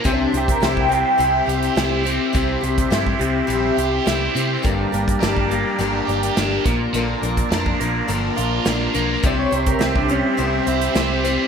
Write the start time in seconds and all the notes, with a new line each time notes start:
0.04 C2 C3 G3 C4 D4 E4 G4 C5 E5 C6, kick, closed hi-hat
0.33 C2 C4 E4 G4, closed hi-hat
0.37 G4
0.48 A#4, kick, closed hi-hat
0.61 C2 G3 C4 E4 G4, snare, closed hi-hat
0.65 C5
0.77 G5, kick
0.89 C4 E4 G4, closed hi-hat
0.93 G5
1.18 C2 C3 G3 C4 E4 G4, closed hi-hat
1.46 C2 C4 E4 G4, closed hi-hat
1.63 closed hi-hat
1.75 C2 G3 C4 E4 G4, snare, closed hi-hat
2.04 C4 E4 G4, closed hi-hat
2.33 C2 C3 G3 C4 E4 G4, kick, closed hi-hat
2.61 C2 C4 E4 G4, closed hi-hat
2.78 kick, closed hi-hat
2.90 G2 G3 C4 E4 G4, snare, closed hi-hat
3.06 kick
3.19 C2 C4 E4 G4, closed hi-hat
3.47 A#1 C3 G3 C4 E4 G4, closed hi-hat
3.77 C2 C4 E4 G4, closed hi-hat
4.05 C2 G3 C4 E4 G4, snare, closed hi-hat
4.35 C3 C4 E4 G4, closed hi-hat
4.62 G1 G2 D3 G3 A#3 D4 G4 A#4 D5 A#5, kick, closed hi-hat
4.92 G1 G3 A#3 D4 G4, closed hi-hat
5.08 kick, closed hi-hat
5.21 G1 G3 A#3 D4 G4, snare, closed hi-hat
5.37 kick
5.51 G3 A#3 D4 G4, closed hi-hat
5.79 G1 G2 D3 G3 A#3 D4 G4, closed hi-hat
6.08 G1 G3 A#3 D4 G4, closed hi-hat
6.23 closed hi-hat
6.37 G1 G3 A#3 D4 G4, snare, closed hi-hat
6.64 A#1 A#2 F3 A#3 D4 F4 A#4 D5, kick, snare, closed hi-hat
6.93 A#1 A#2 D3 F3 A#3 D4 A#4, closed hi-hat
7.22 A#1 F3 A#3 D4 A#4, closed hi-hat
7.37 kick, closed hi-hat
7.51 F2 F3 A#3 D4 A#4, snare, closed hi-hat
7.66 kick
7.80 A#1 F3 A#3 D4 A#4, closed hi-hat
8.08 G1 A#2 D3 F3 A#3 D4 A#4, closed hi-hat
8.36 A#1 F3 A#3 D4 F4 A#4, closed hi-hat
8.65 A#1 F3 A#3 D4 A#4, snare, closed hi-hat
8.94 B1 F3 A#3 D4 A#4, closed hi-hat
9.23 C2 C3 G3 C4 E4 G4 C5 D5 E5 C6, kick, closed hi-hat
9.39 C#5
9.51 C2 C4 E4 C5, closed hi-hat
9.66 A#4, kick, closed hi-hat
9.79 C2 G3 C4 E4 C5, snare, closed hi-hat
9.83 G4
9.96 D4, kick
10.08 G3 C4 C#4 E4 C5, closed hi-hat
10.26 C4
10.37 C2 C3 G3 C4 E4 C5, closed hi-hat
10.42 C4
10.66 C2 C4 E4 C5, closed hi-hat
10.81 closed hi-hat
10.94 C2 G3 C4 E4 C5, snare, closed hi-hat
11.24 G3 C4 E4 C5, snare, closed hi-hat